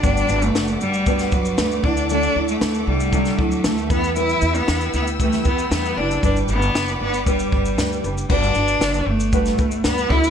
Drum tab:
CC |----------------|----------------|----------------|----------------|
SH |xxxxxxxxxxxxxx-x|xx-xxx-xxx-xxxxx|xxxxxxxxxxxxxx-x|xxxxxx-xxx-xxxxx|
SD |----o----o--o---|----o----o--o---|----o----o--o---|----o-------o---|
BD |o-------o-o---o-|--------o-o---o-|--------o-o-----|o-------o-o-----|

CC |x---------------|
SH |-xxxxx-xxxxxxx-x|
SD |----o----o--o---|
BD |o-------o-o---o-|